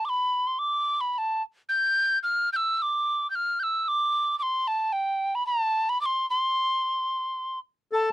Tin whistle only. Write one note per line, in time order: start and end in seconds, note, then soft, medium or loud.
0.05 0.10 D6 medium
0.09 0.49 B5 medium
0.47 0.60 C6 medium
0.59 1.02 D6 medium
1.01 1.13 B5 medium
1.13 1.19 B5 medium
1.18 1.43 A5 medium
1.69 2.19 G6 medium
2.23 2.50 F6 medium
2.53 2.77 E6 medium
2.53 2.57 G6 medium
2.77 2.83 E6 medium
2.82 3.30 D6 medium
3.30 3.36 G6 medium
3.35 3.61 F6 medium
3.60 3.84 E6 medium
3.60 3.64 G6 medium
3.84 3.89 E6 medium
3.88 4.38 D6 medium
4.39 4.69 C6 medium
4.39 4.44 D6 medium
4.67 4.94 A5 medium
4.93 5.37 G5 medium
5.35 5.46 B5 medium
5.47 5.91 A5 medium
5.89 6.01 B5 medium
6.01 6.07 D6 medium
6.06 6.28 C6 medium
6.30 7.59 C6 medium
7.95 8.13 A5 medium